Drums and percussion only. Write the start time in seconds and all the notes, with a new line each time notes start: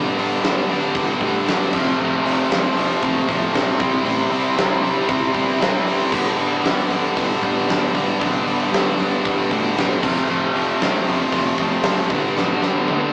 0.18 open hi-hat
0.44 snare, open hi-hat
0.69 open hi-hat
0.95 kick, open hi-hat
1.21 kick, open hi-hat
1.48 snare, open hi-hat
1.73 kick, crash
2.26 open hi-hat
2.51 snare, open hi-hat
2.77 open hi-hat
3.02 kick, open hi-hat
3.29 kick, open hi-hat
3.54 snare, open hi-hat
3.80 kick, open hi-hat
4.05 open hi-hat
4.32 open hi-hat
4.58 snare, open hi-hat
4.84 open hi-hat
5.09 kick, open hi-hat
5.35 kick, open hi-hat
5.61 snare, open hi-hat
5.87 open hi-hat
6.12 kick, crash
6.39 open hi-hat
6.65 snare, open hi-hat
6.90 open hi-hat
7.17 kick, open hi-hat
7.43 kick, open hi-hat
7.69 snare, open hi-hat
7.95 kick, open hi-hat
8.21 kick, open hi-hat
8.47 open hi-hat
8.73 snare, open hi-hat
8.99 open hi-hat
9.25 kick, open hi-hat
9.51 kick, open hi-hat
9.78 snare, open hi-hat
10.03 kick, crash
10.56 open hi-hat
10.81 snare, open hi-hat
11.07 open hi-hat
11.32 kick, open hi-hat
11.57 kick, open hi-hat
11.83 snare, open hi-hat
12.10 kick, open hi-hat
12.37 snare
12.62 snare
12.88 high tom